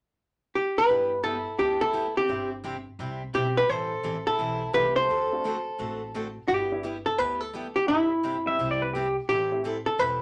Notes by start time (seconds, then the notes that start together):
0.55 G4
0.78 B4
0.88 G1 G3 B3 D4 E4 G4
1.23 G3 B3 E4 G4 A4
1.59 D2 G3 B3 D4 E4 G4
1.81 E4 A4
1.93 G3 B3 E4 G4
2.17 C4 G4
2.28 G1 C3 G3 C4 E4 G4
2.64 C3 G3 C4 E4 G4
2.99 C2 C3 G3 C4 E4 G4
3.34 B1 C3 G3 C4 E4 G4
3.57 G4 B4
3.69 A1 E3 G3 C4 E4 A4 C5
4.03 A1 E3 G3 C4 E4 A4
4.27 E4 A4
4.38 B1 E3 G3 C4 E4 A4
4.73 C2 E3 G3 A3 C4 E4 G4 A4 B4
4.96 A4 C5
5.09 D2 D3 A3 C4 F#4 A4
5.32 A3 C4 D4 F#4
5.44 D3 A3 C4 F#4 A4
5.78 A1 D3 A3 C4 F#4 A4
6.14 D3 A3 C4 F#4 A4
6.48 G1 G3 B3 E4 G4
6.71 G3 B3 D4 E4
6.83 G3 B3 E4 G4
7.06 A4
7.18 D2 G3 B3 E4 G4 B4
7.41 A4
7.53 G3 B3 E4 G4
7.76 G4
7.88 G1 C3 G3 C4 E4 G4
8.23 C3 G3 C4 E4 G4
8.45 G3 C4 E4 G4 E5
8.59 C2 C3 G3 C4 E4 G4
8.71 D5
8.82 B4
8.93 C3 G3 C4 E4 G4
9.29 A1 E3 G3 C4 E4 G4 A4
9.51 A3 C4 E4 G4
9.64 E3 G3 C4 E4 A4
9.86 A4
9.98 E1 E3 G3 C4 E4 A4 B4